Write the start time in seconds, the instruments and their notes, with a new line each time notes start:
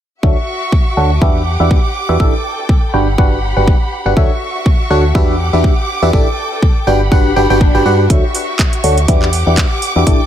0.23 fm bass D2, fm electric piano D4 F#4 A4 C#5 E5, violin section F#4 E5 C#6, kick
0.72 kick
0.97 fm bass D2, fm electric piano D4 F#4 A4 C#5 F#5
1.21 fm bass E2, fm electric piano D4 F#4 G4 B4 E5, violin section G4 F#5 D6, kick
1.60 fm bass E2, fm electric piano D4 F#4 G4 B4 E5
1.71 kick
2.09 fm bass E2, fm electric piano D4 F#4 G4 B4 E5
2.20 fm bass A1, fm electric piano D4 E4 G4 A4 E5, violin section A4 G5, kick
2.69 kick
2.93 fm bass G1, fm electric piano D4 F#4 G4 B4 G5, violin section G4 F#5 B5
3.18 fm bass G1, fm electric piano D4 F#4 G4 B4 F#5, kick
3.57 fm bass G1, fm electric piano D4 F#4 G4 B4 F#5
3.67 kick
4.06 fm bass G1, fm electric piano D4 F#4 G4 B4 F#5
4.17 fm bass D2, fm electric piano D4 F#4 A4 C#5 E5, violin section F#4 E5 C#6, kick
4.66 kick
4.90 fm bass D2, fm electric piano D4 F#4 A4 C#5 F#5
5.15 fm bass E2, fm electric piano D4 F#4 G4 B4 E5, violin section G4 F#5 D6, kick
5.53 fm bass E2, fm electric piano D4 F#4 G4 B4 E5
5.64 kick
6.02 fm bass E2, fm electric piano D4 F#4 G4 B4 E5
6.13 fm bass A1, fm electric piano D4 E4 G4 A4 E5, violin section A4 G5, kick
6.62 kick
6.87 fm bass G1, fm electric piano D4 F#4 G4 B4 G5, violin section G4 F#5 B5
7.12 fm bass G1, fm electric piano D4 F#4 G4 B4 F#5, kick, swell
7.36 fm bass G1, fm electric piano D4 F#4 G4 B4 G5
7.50 fm bass G1, fm electric piano D4 F#4 G4 B4 G5
7.61 kick
7.75 fm bass G1, fm electric piano D4 F#4 G4 B4 G5
7.86 fm bass G2, fm electric piano D4 F#4 G4 B4 F#5
8.10 fm bass D2, fm electric piano D4 A4 C#5 E5, violin section F#4 E5 C#6, kick, closed hi-hat
8.35 open hi-hat
8.59 kick, clap, closed hi-hat
8.73 closed hi-hat
8.84 fm bass D2, fm electric piano D4 F#4 A4 C#5 F#5, open hi-hat
8.98 closed hi-hat
9.08 fm bass E2, fm electric piano D4 F#4 G4 B4 E5, violin section G4 F#5 D6, kick, closed hi-hat
9.22 clap
9.33 open hi-hat
9.47 fm bass E2, fm electric piano D4 F#4 G4 B4 E5
9.57 kick, clap, closed hi-hat
9.82 open hi-hat
9.96 fm bass E2, fm electric piano D4 F#4 G4 B4 E5
10.07 fm bass A1, fm electric piano D4 E4 G4 A4 E5, violin section A4 G5, kick, closed hi-hat